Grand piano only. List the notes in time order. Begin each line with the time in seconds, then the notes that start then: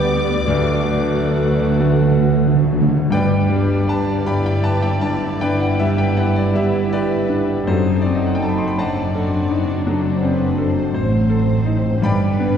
Already playing: D2 D3 G3 G4 B4
0.47 D2 D3
1.79 A3 F#4 A4
3.11 G2 B4 D5 G5
3.50 G3
3.87 B4 A5
4.26 G4 D5 G5 B5
4.46 G5
4.63 B4 A5
4.82 G5
5.01 D4 A5
5.41 D3 B4 D5 G5
5.60 F#5
5.79 G3 E5
5.98 G5
6.17 B4 F#5
6.36 D5
6.55 G4 E5
6.93 G4 B4 D5
7.29 D4
7.67 F#2 F#4 A4 C5
8.02 D5
8.06 C4
8.15 D#5
8.26 F#5
8.35 G5
8.42 A4 A5
8.49 B5
8.58 C6
8.67 B5
8.78 C5 D#5 F#5 A5
9.15 A4
9.50 D#4
9.87 F#3
10.23 C4
10.58 A4
10.94 C5
11.29 A4
11.65 D#4
12.02 G2 D5 G5 B5
12.40 B3